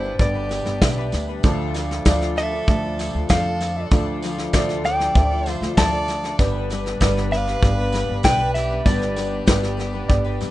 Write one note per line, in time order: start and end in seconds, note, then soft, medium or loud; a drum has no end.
0.00 0.11 G1 loud
0.00 1.40 G1 medium
0.00 1.40 G2 medium
0.00 1.40 B2 medium
0.00 0.20 G3 medium
0.00 1.40 G3 medium
0.00 0.20 B3 medium
0.00 0.20 D4 medium
0.00 6.35 D4 medium
0.00 0.18 E4 medium
0.00 0.20 B4 medium
0.00 0.33 B4 medium
0.00 0.21 C5 medium
0.00 0.20 D5 medium
0.00 1.40 D5 medium
0.05 0.36 G3 soft
0.05 0.35 B3 soft
0.05 0.34 D4 soft
0.19 0.60 G1 loud
0.19 0.60 G3 medium
0.19 0.60 B3 medium
0.19 0.60 D4 medium
0.19 1.09 G4 medium
0.19 0.60 B4 medium
0.19 0.60 D5 medium
0.19 1.09 D5 medium
0.19 kick loud
0.19 snare soft
0.19 tambourine soft
0.34 0.48 G3 soft
0.34 0.49 B3 soft
0.34 0.50 D4 soft
0.34 0.50 B4 medium
0.49 0.81 G3 medium
0.49 0.81 B3 medium
0.49 0.82 D4 medium
0.49 0.82 B4 medium
0.49 snare soft
0.49 tambourine medium
0.66 0.80 G1 medium
0.66 snare soft
0.81 1.10 B1 medium
0.81 0.97 G2 medium
0.81 0.98 D3 medium
0.81 1.22 G3 medium
0.81 0.98 G3 medium
0.81 1.22 B3 medium
0.81 0.98 B3 medium
0.81 1.22 D4 medium
0.81 0.97 D4 medium
0.81 1.22 B4 medium
0.81 0.96 B4 medium
0.81 1.22 E5 medium
0.81 kick medium
0.81 snare loud
0.81 tambourine loud
0.97 1.29 G3 medium
0.97 1.29 B3 medium
0.97 1.28 D4 medium
0.97 1.26 B4 medium
1.12 1.41 D2 medium
1.12 snare soft
1.12 tambourine medium
1.28 1.44 G3 medium
1.28 1.45 B3 medium
1.28 1.44 D4 medium
1.28 1.44 B4 medium
1.43 1.98 D2 loud
1.43 3.88 D2 medium
1.43 1.75 D3 medium
1.43 3.88 D3 medium
1.43 1.84 F3 medium
1.43 1.73 F3 medium
1.43 6.35 F3 medium
1.43 6.35 A3 medium
1.43 1.84 A3 medium
1.43 1.84 D4 medium
1.43 1.74 D4 medium
1.43 1.75 F4 loud
1.43 6.35 A4 medium
1.43 1.84 A4 medium
1.43 1.75 A4 medium
1.43 1.84 D5 loud
1.43 kick loud
1.43 snare soft
1.43 tambourine medium
1.74 2.04 F3 medium
1.74 2.05 D4 medium
1.74 2.06 F4 medium
1.74 2.06 A4 medium
1.74 snare soft
1.74 tambourine medium
1.91 snare soft
2.05 2.59 D2 loud
2.05 2.37 D3 medium
2.05 2.35 F3 medium
2.05 2.46 F3 medium
2.05 2.46 A3 medium
2.05 2.36 D4 medium
2.05 2.46 D4 medium
2.05 2.37 F4 loud
2.05 2.46 A4 medium
2.05 2.38 A4 loud
2.05 2.46 D5 loud
2.05 kick medium
2.05 snare loud
2.05 tambourine loud
2.21 snare soft
2.36 2.52 F3 medium
2.36 2.53 D4 medium
2.36 2.52 F4 medium
2.36 3.26 A4 medium
2.36 2.50 A4 medium
2.36 3.30 E5 medium
2.36 snare soft
2.36 tambourine soft
2.52 2.84 D4 soft
2.52 2.83 F4 soft
2.52 2.82 A4 medium
2.68 3.08 D2 loud
2.68 3.08 F3 medium
2.68 3.08 A3 medium
2.68 3.08 D4 medium
2.68 3.08 A4 medium
2.68 3.08 D5 medium
2.68 kick loud
2.68 snare soft
2.68 tambourine soft
2.83 2.98 D4 soft
2.83 2.98 F4 soft
2.83 2.99 A4 medium
2.98 3.29 F3 medium
2.98 3.29 D4 medium
2.98 3.30 F4 medium
2.98 3.31 A4 medium
2.98 snare soft
2.98 tambourine medium
3.14 3.28 D2 loud
3.29 3.84 F2 loud
3.29 3.45 D3 medium
3.29 3.45 F3 medium
3.29 3.70 F3 medium
3.29 3.70 A3 medium
3.29 3.70 D4 medium
3.29 3.46 D4 medium
3.29 3.46 F4 loud
3.29 3.88 A4 loud
3.29 3.70 A4 medium
3.29 3.44 A4 medium
3.29 3.70 D5 medium
3.29 3.88 F5 loud
3.29 kick medium
3.29 snare loud
3.29 tambourine loud
3.45 3.77 D4 soft
3.45 3.76 F4 medium
3.45 3.75 A4 medium
3.61 snare soft
3.61 tambourine medium
3.76 3.92 D4 soft
3.76 3.92 F4 medium
3.76 3.92 A4 medium
3.91 6.35 D2 medium
3.91 4.45 D2 medium
3.91 6.35 D3 medium
3.91 4.23 D3 medium
3.91 4.31 F3 medium
3.91 4.21 F3 medium
3.91 4.31 A3 medium
3.91 4.31 D4 medium
3.91 4.22 D4 medium
3.91 4.23 F4 medium
3.91 4.31 A4 medium
3.91 4.24 A4 medium
3.91 4.31 D5 medium
3.91 kick loud
3.91 snare soft
3.91 tambourine medium
4.22 4.53 F3 medium
4.22 4.53 D4 medium
4.22 4.54 F4 medium
4.22 4.54 A4 medium
4.22 snare soft
4.22 tambourine medium
4.38 snare soft
4.53 5.07 D2 loud
4.53 4.84 D3 loud
4.53 4.83 F3 medium
4.53 4.94 F3 medium
4.53 4.94 A3 medium
4.53 4.84 D4 loud
4.53 4.94 D4 medium
4.53 4.85 F4 loud
4.53 4.94 A4 medium
4.53 4.85 A4 loud
4.53 4.94 D5 loud
4.53 kick medium
4.53 snare loud
4.53 tambourine loud
4.69 snare soft
4.84 5.00 F3 medium
4.84 5.01 D4 medium
4.84 5.00 F4 medium
4.84 4.98 A4 medium
4.84 5.48 D5 medium
4.84 5.52 G5 loud
4.84 snare soft
4.84 tambourine soft
5.00 5.32 D4 medium
5.00 5.31 F4 medium
5.00 5.29 A4 medium
5.00 snare soft
5.15 5.56 D2 loud
5.15 5.55 F3 medium
5.15 5.55 A3 medium
5.15 5.55 D4 medium
5.15 5.55 A4 medium
5.15 5.55 E5 medium
5.15 kick loud
5.15 snare soft
5.15 tambourine soft
5.30 5.46 D4 soft
5.30 5.46 F4 medium
5.30 5.46 A4 medium
5.46 5.76 F3 medium
5.46 5.77 D4 medium
5.46 5.78 F4 medium
5.46 5.78 A4 medium
5.46 5.74 C5 medium
5.46 snare soft
5.46 tambourine medium
5.52 5.77 F5 loud
5.61 5.75 D2 loud
5.61 snare soft
5.77 6.31 D2 loud
5.77 5.93 D3 medium
5.77 6.17 F3 medium
5.77 5.93 F3 medium
5.77 6.17 A3 medium
5.77 6.17 D4 medium
5.77 5.93 D4 medium
5.77 5.93 F4 medium
5.77 6.17 A4 medium
5.77 5.91 A4 medium
5.77 6.35 D5 loud
5.77 6.17 D5 medium
5.77 6.35 A5 loud
5.77 kick medium
5.77 snare loud
5.77 tambourine loud
5.92 6.25 D4 medium
5.92 6.24 F4 medium
5.92 6.22 A4 medium
6.08 snare soft
6.08 tambourine medium
6.24 6.40 D4 soft
6.24 6.40 F4 medium
6.24 6.39 A4 medium
6.24 snare soft
6.38 6.92 G1 loud
6.38 8.82 G1 medium
6.38 8.82 G2 medium
6.38 6.70 G2 medium
6.38 6.71 D3 medium
6.38 10.51 G3 medium
6.38 6.79 G3 medium
6.38 6.68 G3 medium
6.38 10.51 B3 medium
6.38 6.79 B3 medium
6.38 6.69 B3 medium
6.38 10.51 D4 medium
6.38 6.79 D4 medium
6.38 6.70 D4 medium
6.38 10.51 B4 loud
6.38 6.79 B4 medium
6.38 6.71 B4 medium
6.38 6.79 D5 medium
6.38 kick loud
6.38 snare soft
6.38 tambourine medium
6.70 7.00 G3 medium
6.70 7.00 B3 medium
6.70 7.01 D4 medium
6.70 7.01 B4 medium
6.70 snare soft
6.70 tambourine medium
6.86 snare soft
7.00 7.54 G1 loud
7.00 7.31 G2 loud
7.00 7.32 D3 medium
7.00 7.41 G3 loud
7.00 7.30 G3 loud
7.00 7.41 B3 medium
7.00 7.31 B3 loud
7.00 7.41 D4 medium
7.00 7.32 D4 medium
7.00 7.41 B4 medium
7.00 7.32 B4 loud
7.00 7.41 D5 loud
7.00 kick medium
7.00 snare loud
7.00 tambourine loud
7.17 snare soft
7.31 7.47 G3 medium
7.31 7.47 B3 medium
7.31 7.46 D4 medium
7.31 8.21 B4 loud
7.31 7.45 B4 medium
7.31 8.21 F5 loud
7.31 snare soft
7.31 tambourine soft
7.46 7.79 G3 medium
7.46 7.78 B3 soft
7.46 7.77 D4 medium
7.46 7.76 B4 medium
7.46 snare soft
7.62 8.03 G1 loud
7.62 8.02 G3 medium
7.62 8.02 B3 medium
7.62 8.02 D4 medium
7.62 8.02 B4 medium
7.62 8.02 D5 medium
7.62 kick loud
7.62 snare soft
7.62 tambourine soft
7.78 7.92 G3 soft
7.78 7.93 B3 soft
7.78 7.93 D4 soft
7.78 7.93 B4 medium
7.92 8.24 G3 medium
7.92 8.24 B3 medium
7.92 8.25 D4 medium
7.92 8.25 B4 medium
7.92 snare soft
7.92 tambourine medium
8.09 8.22 G1 medium
8.23 8.78 B1 loud
8.23 8.40 G2 medium
8.23 8.40 D3 medium
8.23 8.64 G3 medium
8.23 8.40 G3 medium
8.23 8.64 B3 medium
8.23 8.40 B3 medium
8.23 8.64 D4 medium
8.23 8.40 D4 medium
8.23 8.64 B4 medium
8.23 8.54 B4 loud
8.23 8.38 B4 medium
8.23 8.64 D5 medium
8.23 8.54 G5 loud
8.23 kick medium
8.23 snare loud
8.23 tambourine loud
8.39 8.71 G3 soft
8.39 8.70 B3 soft
8.39 8.70 D4 medium
8.39 8.68 B4 medium
8.54 8.85 G4 medium
8.54 8.87 E5 loud
8.54 snare soft
8.54 tambourine medium
8.70 8.86 G3 soft
8.70 8.86 B3 medium
8.70 8.86 D4 medium
8.70 8.86 B4 medium
8.85 10.51 G1 medium
8.85 9.39 G1 loud
8.85 10.51 G2 medium
8.85 9.17 G2 medium
8.85 9.17 D3 medium
8.85 9.25 G3 medium
8.85 9.15 G3 medium
8.85 9.25 B3 medium
8.85 9.16 B3 medium
8.85 9.25 D4 medium
8.85 9.17 D4 medium
8.85 10.51 G4 medium
8.85 9.25 B4 medium
8.85 9.18 B4 medium
8.85 10.51 D5 medium
8.85 9.26 D5 medium
8.85 kick loud
8.85 snare soft
8.85 tambourine medium
9.02 snare soft
9.16 9.46 G3 medium
9.16 9.46 B3 medium
9.16 9.47 D4 medium
9.16 9.47 B4 medium
9.16 snare soft
9.16 tambourine medium
9.46 10.01 G1 loud
9.46 9.78 G2 medium
9.46 9.78 D3 medium
9.46 9.76 G3 medium
9.46 9.87 G3 medium
9.46 9.77 B3 medium
9.46 9.87 B3 medium
9.46 9.87 D4 medium
9.46 9.78 D4 medium
9.46 9.87 B4 medium
9.46 9.79 B4 medium
9.46 9.87 D5 medium
9.46 kick medium
9.46 snare loud
9.46 tambourine loud
9.63 snare soft
9.77 9.93 G3 medium
9.77 9.93 B3 medium
9.77 9.92 D4 medium
9.77 9.91 B4 medium
9.77 snare soft
9.93 10.26 G3 soft
9.93 10.25 B3 medium
9.93 10.25 D4 medium
9.93 10.23 B4 medium
10.08 10.37 G1 loud
10.08 10.49 G3 medium
10.08 10.49 B3 medium
10.08 10.49 D4 medium
10.08 10.49 B4 medium
10.08 10.49 D5 loud
10.08 kick loud
10.08 snare soft
10.08 tambourine soft
10.25 10.39 G3 soft
10.25 10.40 B3 medium
10.25 10.41 D4 medium
10.25 10.40 B4 medium
10.40 10.51 F2 medium
10.40 10.51 G3 medium
10.40 10.51 B3 medium
10.40 10.51 D4 medium
10.40 10.51 B4 medium
10.40 snare soft
10.40 tambourine medium